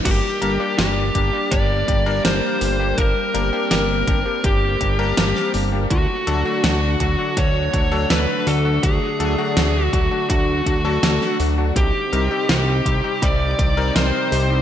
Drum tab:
CC |x---------------|----------------|----------------|----------------|
HH |x-x-x-x-x-x-x-o-|x-x-x-x-x-x-x-o-|x-x-x-x-x-x-x-o-|x-x-x-x-x-x-x-o-|
SD |----o-------o---|----o-------oo--|----o-------o---|----o-------oo--|
BD |o-----o-o-o-----|o-----o-o-o-----|o-----o-o-o-----|o-----o-o-o-----|

CC |----------------|
HH |x-x-x-x-x-x-x-o-|
SD |----o-------o---|
BD |o-----o-o-o-----|